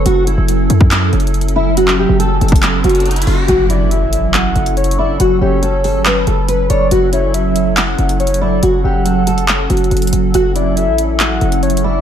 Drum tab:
HH |x-----------x-----------x-----------x-----------x-----------x---x---x---x---x---x---------------|x-----------------------x-----------x---x---x---x-----------x--x--x--x--x--x--x--x--o-----------|x-----------x-----------x-----------x-----------x-----------x-----x-----x---x---x---------------|x-----------------------x-----------o-----------x-----------x-----------x-----------x-----------|
CP |------------------------------------------------x-----------------------------------------------|------x-----------------------------------------x-----------------------------------------------|------------------------------------------------x-----------------------------------------------|------------------------------------------------x-----------------------------------------------|
BD |------------------------------------------o-----------------------------------------------------|------------------------------------------o-----------------------------------------------------|------------------------------------------------------------------------------------------------|------------------------------------------------------------------------------------------------|

HH |x-----------x-----------x-----------x-----------x-----------x-----x-----x---x---x---------------|x-----------------------x-----------x-----x-----x-----------x---x---x---x--x--x--x--x-----------|x-----------x-----------x-----------x-----------x-----------x-----x-----x---x---x---------------|
CP |------------------------------------------------x-----------------------------------------------|------------------------------------------------x-----------------------------------------------|------------------------------------------------x-----------------------------------------------|
BD |------------------------------------------------------------------------------------------------|------------------------------------------------------------------------------------------------|------------------------------------------------------------------------------------------------|